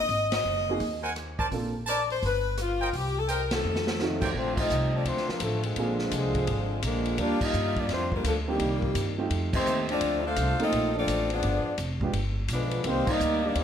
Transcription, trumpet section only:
1.02 1.12 A#4 medium
1.02 1.12 C5 medium
1.02 1.11 F#5 medium
1.02 1.12 G#5 medium
1.38 1.47 A#4 medium
1.38 1.47 C5 medium
1.38 1.47 D5 medium
1.38 1.47 A5 medium
1.87 2.02 A#4 medium
1.87 2.02 C5 medium
1.87 2.02 D5 medium
1.87 2.02 A5 medium
2.80 2.89 A#4 medium
2.80 2.89 C5 medium
2.80 2.89 D#5 medium
2.80 2.89 G5 medium
3.28 3.44 A#4 medium
3.28 3.44 C5 medium
3.28 3.44 D#5 medium
3.28 3.44 G5 medium
4.21 4.30 A#3 medium
4.21 4.30 A4 medium
4.21 4.30 C5 medium
4.21 4.30 D5 medium
4.21 4.30 G5 medium

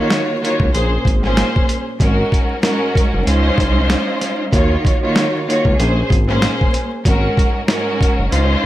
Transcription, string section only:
0.00 0.38 D#3 loud
0.00 0.39 A#3 medium
0.00 0.39 F4 medium
0.00 0.39 F#4 medium
0.00 0.40 C#5 loud
0.41 0.73 D#3 medium
0.41 0.71 A#3 medium
0.41 0.74 F4 medium
0.41 0.74 F#4 medium
0.41 0.74 C#5 loud
0.71 1.02 A#2 medium
0.71 1.02 A#3 medium
0.71 1.02 C#4 medium
0.71 1.03 G#4 medium
0.71 1.03 C5 loud
1.22 1.80 A#2 medium
1.22 1.81 A#3 medium
1.22 1.81 C#4 medium
1.22 1.81 G#4 medium
1.22 1.81 C5 loud
2.00 2.59 G#2 medium
2.00 2.59 G#3 medium
2.00 2.59 C#4 medium
2.00 2.60 F#4 medium
2.00 2.60 A#4 loud
2.61 3.25 G#2 loud
2.61 3.24 G#3 medium
2.61 3.23 C#4 medium
2.61 3.26 F#4 medium
2.61 3.27 A#4 loud
3.25 4.44 G#3 medium
3.25 4.43 C#4 loud
3.25 4.44 D#4 loud
3.25 4.44 F4 medium
3.25 4.44 C5 loud
4.52 4.98 D#3 medium
4.52 4.98 A#3 medium
4.52 4.98 F4 medium
4.52 4.99 F#4 medium
4.52 4.99 C#5 loud
5.01 5.44 D#3 loud
5.01 5.44 A#3 medium
5.01 5.44 F4 medium
5.01 5.45 F#4 medium
5.01 5.45 C#5 loud
5.46 5.78 D#3 medium
5.46 5.76 A#3 medium
5.46 5.79 F4 medium
5.46 5.79 F#4 medium
5.46 5.79 C#5 loud
5.76 6.07 A#2 loud
5.76 6.07 A#3 loud
5.76 6.08 C#4 medium
5.76 6.08 G#4 medium
5.76 6.08 C5 loud
6.28 6.85 A#2 loud
6.28 6.86 A#3 medium
6.28 6.86 C#4 medium
6.28 6.86 G#4 medium
6.28 6.87 C5 loud
7.05 7.64 G#2 medium
7.05 7.64 G#3 medium
7.05 7.64 C#4 medium
7.05 7.65 F#4 medium
7.05 7.65 A#4 loud
7.66 8.30 G#2 loud
7.66 8.29 G#3 medium
7.66 8.29 C#4 medium
7.66 8.31 F#4 medium
7.66 8.32 A#4 loud
8.30 8.66 G#3 medium
8.30 8.66 C#4 loud
8.30 8.66 D#4 medium
8.30 8.66 F4 medium
8.30 8.66 C5 loud

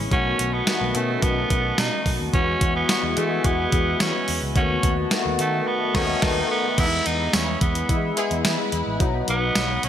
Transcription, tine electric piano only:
0.00 0.14 C#3 medium
0.00 0.14 G#3 medium
0.00 0.12 B3 medium
0.00 0.14 E4 medium
0.11 0.46 D#3 medium
0.11 0.46 A3 medium
0.11 0.46 B3 medium
0.11 0.46 F#4 medium
0.67 0.84 D#3 medium
0.67 0.84 A3 medium
0.67 0.84 B3 medium
0.67 0.85 F#4 medium
0.94 1.63 D#3 medium
0.94 1.64 A3 medium
0.94 1.64 B3 medium
0.94 1.64 C#4 medium
2.33 2.68 E3 medium
2.33 2.68 G#3 medium
2.33 2.68 B3 medium
2.33 2.68 F#4 medium
2.88 3.06 E3 medium
2.88 3.06 G#3 medium
2.88 3.06 B3 medium
2.88 3.07 F#4 medium
3.16 3.85 E3 medium
3.16 3.86 G#3 medium
3.16 3.86 B3 medium
3.16 3.86 G#4 medium
4.55 4.90 D#3 medium
4.55 4.90 A3 medium
4.55 4.90 B3 medium
4.55 4.91 F#4 medium
5.11 5.28 D#3 medium
5.11 5.29 A3 medium
5.11 5.29 B3 medium
5.11 5.29 F#4 medium
5.39 5.67 D#3 medium
5.39 5.67 A3 medium
5.39 5.67 B3 medium
5.39 5.67 D#4 medium
5.94 6.13 D#3 loud
5.94 6.14 A3 loud
5.94 6.14 B3 loud
5.94 6.14 D#4 loud
6.22 6.41 D#3 loud
6.22 6.41 A3 loud
6.22 6.42 B3 loud
6.22 6.42 D#4 loud
6.78 7.47 G#3 medium
6.78 7.47 B3 medium
6.78 6.85 D#4 medium
6.85 7.51 E4 medium
7.89 8.06 G#3 medium
7.89 8.06 B3 medium
7.89 8.07 E4 medium
8.17 8.69 G#3 medium
8.17 8.69 B3 medium
8.17 8.69 E4 medium
9.00 9.69 F#3 medium
9.00 9.69 B3 medium
9.00 9.70 D#4 loud

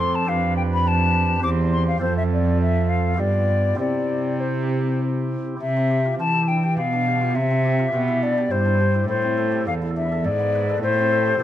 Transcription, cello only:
0.00 1.40 F2 medium
1.44 2.00 E2 medium
2.02 3.20 F2 medium
3.18 3.80 G2 medium
3.79 5.40 C3 medium
5.60 6.14 C3 medium
6.18 6.78 E3 medium
6.77 7.36 B2 medium
7.34 7.92 C3 medium
7.93 8.50 B2 medium
8.51 9.08 G2 medium
9.08 9.68 A2 medium
9.67 10.26 E2 medium
10.25 10.81 G#2 medium
10.82 11.38 A2 medium
11.39 11.43 B2 medium

